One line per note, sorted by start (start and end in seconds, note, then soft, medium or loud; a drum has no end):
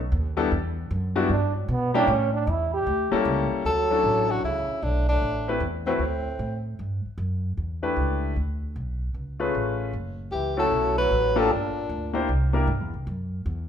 0.00 0.10 B1 medium
0.12 0.50 D#2 medium
0.37 0.49 G3 medium
0.37 0.49 B3 medium
0.37 0.49 D4 medium
0.37 0.49 E4 medium
0.37 0.49 A4 medium
0.52 0.89 E2 medium
0.91 1.28 F#2 loud
1.16 1.28 G3 medium
1.16 1.28 B3 medium
1.16 1.28 D4 medium
1.16 1.28 E4 medium
1.16 1.28 F#4 medium
1.29 1.67 G2 medium
1.29 1.55 D4 medium
1.57 1.73 F#3 medium
1.68 2.06 B2 loud
1.68 1.94 B3 medium
1.94 2.06 G3 medium
1.94 2.07 A#3 medium
1.94 2.07 C#4 medium
1.94 2.11 D4 loud
1.94 2.07 E4 medium
1.94 2.07 G4 loud
2.07 2.46 A2 medium
2.07 2.33 C#4 loud
2.34 2.52 D4 medium
2.47 2.85 E2 loud
2.47 2.73 E4 medium
2.74 3.22 G4 loud
2.86 3.10 D2 medium
3.12 3.62 G3 medium
3.12 3.62 A#3 medium
3.12 3.62 C#4 medium
3.12 3.62 E4 medium
3.12 3.62 A4 medium
3.12 muted upright bass stroke soft
3.25 3.49 C#2 loud
3.51 muted upright bass stroke soft
3.65 4.03 D2 medium
3.65 4.32 F#3 medium
3.65 4.32 A4 loud
3.90 4.41 F#3 medium
3.90 4.41 C#4 medium
3.90 4.41 D4 medium
3.90 4.41 E4 medium
3.90 4.41 A4 medium
4.03 4.42 A1 medium
4.31 4.43 D3 medium
4.31 4.44 F#4 medium
4.43 4.67 C#2 medium
4.43 4.85 C#3 medium
4.43 4.84 E4 medium
4.69 muted upright bass stroke soft
4.82 5.20 B1 medium
4.82 5.08 A2 medium
4.82 5.08 D4 medium
5.09 5.58 A2 medium
5.09 5.58 D4 medium
5.22 5.60 A1 medium
5.48 5.60 A3 medium
5.48 5.60 C4 medium
5.48 5.60 E4 medium
5.48 5.60 G4 medium
5.48 5.60 B4 medium
5.60 5.98 E2 medium
5.87 5.93 A2 medium
5.87 5.99 A3 medium
5.87 5.93 C4 medium
5.87 5.99 C4 medium
5.87 5.99 E4 medium
5.87 5.99 F#4 medium
5.87 5.99 B4 medium
5.99 6.38 D2 medium
5.99 6.61 A2 medium
5.99 6.62 C4 medium
6.39 6.77 A2 medium
6.79 7.03 G2 medium
7.05 muted upright bass stroke soft
7.18 7.56 F#2 medium
7.57 7.95 E2 medium
7.83 8.33 A3 medium
7.83 8.33 D4 medium
7.83 8.33 E4 medium
7.83 8.33 G4 medium
7.83 8.33 B4 medium
7.96 8.35 C#2 medium
8.36 8.74 D2 medium
8.76 9.13 B1 medium
9.14 9.52 C#2 medium
9.39 9.90 A3 medium
9.39 9.90 C#4 medium
9.39 9.90 F4 medium
9.39 9.90 G#4 medium
9.39 9.90 B4 medium
9.55 9.92 A1 medium
9.93 10.31 F#1 medium
10.32 10.70 C#2 medium
10.32 10.56 E3 medium
10.32 10.56 G4 medium
10.57 10.94 F#3 medium
10.57 11.07 A3 medium
10.57 11.08 C#4 medium
10.57 11.08 E4 medium
10.57 11.08 F#4 medium
10.57 11.08 A4 medium
10.57 10.95 A4 medium
10.71 11.09 B1 medium
10.98 11.38 F#3 medium
10.98 11.40 B4 loud
11.11 11.49 A1 medium
11.36 11.54 F#3 medium
11.36 11.48 A#3 medium
11.36 11.48 D4 medium
11.36 11.48 F4 medium
11.36 11.49 G4 medium
11.36 11.49 A4 medium
11.36 11.53 A4 medium
11.51 11.89 G1 medium
11.51 12.29 A#2 medium
11.51 12.29 D4 medium
11.89 12.27 D2 medium
12.13 12.26 A#3 medium
12.13 12.27 D4 medium
12.13 12.27 E4 medium
12.13 12.27 G4 medium
12.13 12.27 C5 medium
12.29 12.67 C2 medium
12.53 12.66 A#3 medium
12.53 12.66 D4 medium
12.53 12.66 E4 medium
12.53 12.66 G4 medium
12.53 12.66 A#4 medium
12.67 12.80 G2 medium
12.80 12.93 E2 medium
12.94 13.06 C2 medium
13.07 13.45 F#2 medium
13.46 13.69 E2 medium